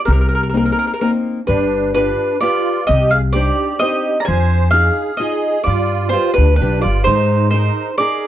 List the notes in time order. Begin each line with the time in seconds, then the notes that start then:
0.05 C2 C3 A#4
0.13 A#4
0.21 A#4
0.29 A#4
0.35 A#4
0.43 A#4
0.50 A#3 A#4
0.54 C4 D#4 A#4
0.65 A#4
0.72 A#4
0.79 A#4
0.87 A#4
0.94 A#4
1.01 A#3 C4 D#4 A#4
1.47 G1 G3 D4 B4
1.92 D4 F4 G4 B4
2.40 F4 G4 B4 D5
2.86 C2 C3 G4 D#5
3.11 G#4 F5
3.33 D4 D#4 G4 C5 D5
3.79 C4 D#4 G4 C5 D#5
4.20 D5 A#5
4.25 F2 F3 C5 G#5
4.70 D#4 F4 G#4 F5
5.17 D#4 F4 G#4 D#5
5.21 G#4
5.64 G2 G3 F4 D5
6.09 F4 G4 C5
6.13 B4
6.34 D4 B4
6.38 D2
6.56 D4 B4
6.60 B1 F4 G4 B4
6.81 F4 D5
6.85 G1
7.03 D#4 C5
7.07 G#2 G#3
7.50 D#4 C5
7.54 G#4 A#4
7.98 D#4 G#4 A#4 D5